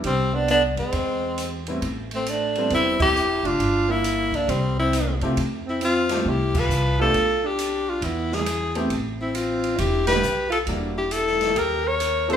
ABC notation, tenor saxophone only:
X:1
M:4/4
L:1/8
Q:"Swing" 1/4=136
K:Ephr
V:1 name="Tenor saxophone"
C D D C4 z | [K:Am] z C D2 E G2 F- | F E2 D C E2 z | z E F2 G B2 A- |
A G2 F E ^G2 z | z E F2 G B2 A | z G A2 ^A ^c2 ^B |]